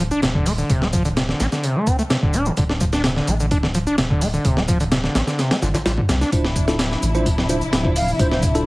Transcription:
Already playing: D1
0.00 closed hi-hat
0.11 D1 D4, shaker
0.22 D1 C3, snare, closed hi-hat, shaker
0.35 D3, kick
0.46 A3, open hi-hat, shaker
0.58 D3, shaker
0.70 D1 C3, kick, closed hi-hat, shaker
0.82 A3, snare
0.93 F3, kick, closed hi-hat, shaker
1.05 D3, closed hi-hat, shaker
1.17 C3, snare, closed hi-hat, shaker
1.29 D3, snare
1.40 A1 D4, snare, closed hi-hat, shaker
1.52 D3, snare, shaker
1.63 C3, closed hi-hat, shaker
1.76 A3
1.87 C4, kick, closed hi-hat, shaker
1.99 A3, shaker
2.10 C3, snare, closed hi-hat, shaker
2.22 D1 D3, kick
2.33 D4, closed hi-hat, shaker
2.46 C3, shaker
2.57 D1 D3, kick, closed hi-hat, shaker
2.69 D4, snare
2.80 F3, kick, closed hi-hat, shaker
2.93 D4, snare, shaker
3.04 C3, snare, closed hi-hat, shaker
3.16 D3, snare
3.27 A1 A3, closed hi-hat, shaker
3.40 D3, shaker
3.51 D1 D4, kick, closed hi-hat, shaker
3.63 D3, snare
3.74 F3, closed hi-hat, shaker
3.87 D1 D4, shaker
3.98 D1 C3, snare, closed hi-hat, shaker
4.10 D3, kick
4.21 A3, open hi-hat, shaker
4.34 D3, shaker
4.45 D1 C3, kick, closed hi-hat, shaker
4.57 A3, snare
4.68 F3, kick, closed hi-hat, shaker
4.80 D3, closed hi-hat, shaker
4.92 C3, snare, closed hi-hat, shaker
5.04 D3, snare
5.15 A1 D4, snare, closed hi-hat, shaker
5.27 D3, snare, shaker
5.38 C3, snare, closed hi-hat, shaker
5.51 A3, snare, closed hi-hat
5.62 G1 D3, snare, shaker
5.74 A1 D3, snare, closed hi-hat, shaker
5.85 A1 G3, snare, closed hi-hat, shaker
5.98 D3, kick
6.09 C2 C3, snare, closed hi-hat, shaker
6.21 D4, snare, shaker
6.32 D1 C3 F3 D4 E4 F4 C5, kick, closed hi-hat, shaker
6.45 snare
6.56 kick, closed hi-hat, shaker
6.68 D4 E4 F4 A4, snare, shaker
6.79 snare, closed hi-hat, shaker
6.91 snare
7.02 A1, closed hi-hat, shaker
7.15 D4 E4 F4 C5, shaker
7.26 D1, kick, closed hi-hat, shaker
7.38 snare
7.49 D4 E4 F4 C5, closed hi-hat, shaker
7.61 D1, shaker
7.73 D1, snare, closed hi-hat, shaker
7.85 D4 E4 F4 C5, kick
7.96 F5, open hi-hat, shaker
8.08 shaker
8.19 D1 D4 E4 F4 C5, kick, closed hi-hat, shaker
8.32 C5, snare
8.43 kick, closed hi-hat, shaker
8.55 D4 E4 F4 A4, closed hi-hat, shaker

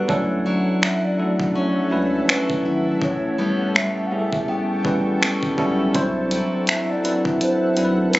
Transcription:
Already playing: F#3 G3 B3 D4 F#4 A4 B4 F#5
0.08 D2 F#3 C#4 D4 E4 A4 C#5 E5, kick
0.46 F#3 E4
0.67 C#2
0.82 F#3 E5, finger snap
1.05 D5
1.18 F3 A3 D4 E4 A4 D5
1.24 F#3
1.40 kick
1.55 C#4 C#5
1.91 C#2 F#3 C#4 D4 E4 B4
2.29 F#3 C#4 E4 B4, finger snap
2.50 kick
2.65 G#1 E4
3.01 A1 A2 A4 C#5 G5 A5 C#6, kick
3.38 G3 B3 C#4
3.60 A1
3.75 G3 E5, finger snap
4.07 G3 F#5
4.11 B3 C#4 E4 G#4 E5
4.19 A4
4.33 kick
4.48 B3 G5
4.84 A1 G3 B3 C#4 E4 B4, kick
5.21 G3 B3 C#4, finger snap
5.43 kick
5.57 B1 G3 B3 C#4 E4 A4, kick
5.93 C2 F#3 C4 D4 E4 C5 E5 F#5, kick, closed hi-hat
6.31 F#3 E4, closed hi-hat
6.53 B1
6.67 F#3 E5, finger snap, closed hi-hat
6.90 D5
7.03 F#3 C4 D4 E4 B4 D5, closed hi-hat
7.25 kick
7.41 C5, closed hi-hat
7.76 B1 F#3 C4 D4 E4 A4, closed hi-hat
7.85 B4
8.09 A#4
8.13 F#3 B3 E4 B4, finger snap, closed hi-hat

